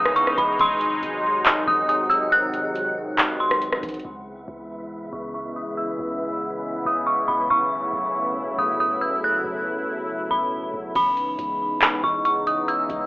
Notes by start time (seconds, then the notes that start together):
Already playing: C#2 C#3 E3 G#3 B3 D#4 B4 D#6 E6
0.05 cross-stick
0.16 C#6, closed hi-hat
0.27 cross-stick
0.38 C#2 B5, kick, closed hi-hat
0.59 G#1 C3 D#3 F#3 C4 G#4 F#5 C6, kick, closed hi-hat
0.81 closed hi-hat
1.03 G#1, closed hi-hat
1.46 clap, closed hi-hat
1.67 G#1 D#6, kick
1.89 D#6, closed hi-hat
2.10 E6, closed hi-hat
2.32 F#6, closed hi-hat
2.54 closed hi-hat
2.75 closed hi-hat
3.18 clap, closed hi-hat
3.40 C6
3.51 cross-stick
3.62 closed hi-hat
3.72 cross-stick
3.83 G#1, kick, closed hi-hat
3.89 closed hi-hat
3.94 closed hi-hat
4.00 closed hi-hat
4.05 C#2 C#3 E3 G#3 B3 E4 B4 E5 B5
4.48 C#2
5.13 C#2 C#6
5.34 C#6
5.56 D#6
5.77 E6
5.99 C#2
6.85 C#2 D#6
7.07 C#6
7.28 C#2 B5
7.50 B1 F#3 A3 C#4 E4 A4 C#6
7.93 B1
8.58 B1 D#6
8.80 D#6
9.01 E6
9.24 F#6
9.44 B1
10.31 B1 B5
10.74 B1
10.95 C#2 C#3 E3 G#3 B3 D#4 B5, kick, closed hi-hat, crash
11.17 closed hi-hat
11.39 C#2, closed hi-hat
11.82 clap, closed hi-hat
12.03 C#2 C#6, kick
12.25 C#6, closed hi-hat
12.47 D#6, closed hi-hat
12.68 E6, closed hi-hat
12.89 C#2, kick, closed hi-hat